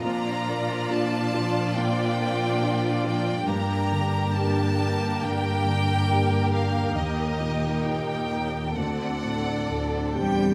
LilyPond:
<<
  \new Staff \with { instrumentName = "Violin section" } { \time 4/4 \key g \minor \tempo 4 = 69 bes''4 a''4 g''4. g''8 | bes''4 a''4 g''4. f''8 | ees''4 g''4 fis''4. r8 | }
  \new Staff \with { instrumentName = "Violin section" } { \time 4/4 \key g \minor <f' d''>1 | <g' bes'>1~ | <g' bes'>2 <a' d''>4. g''8 | }
  \new Staff \with { instrumentName = "French horn" } { \time 4/4 \key g \minor r1 | r1 | r2. r8 g'8 | }
  \new Staff \with { instrumentName = "Viola section" } { \time 4/4 \key g \minor << { d'1 | d'1 | ees'2 d'2 | } \\ { f1 | bes1~ | bes2 c'2 | } >> }
  \new Staff \with { instrumentName = "Grand piano" } { \time 4/4 \key g \minor bes,8 bes8 <d' f'>8 f8 bes,8 bes8 <d' f'>8 f8 | g,8 d8 <d' g'>8 bes8 g,8 d8 <d' g'>8 bes8 | ees,8 bes,8 <ees' g'>8 bes8 d,8 a,8 <d' a'>8 c'8 | }
  \new Staff \with { instrumentName = "Cello section" } { \clef bass \time 4/4 \key g \minor bes,1 | g,1 | ees,2 d,4 d,8 <e, g>8 | }
>>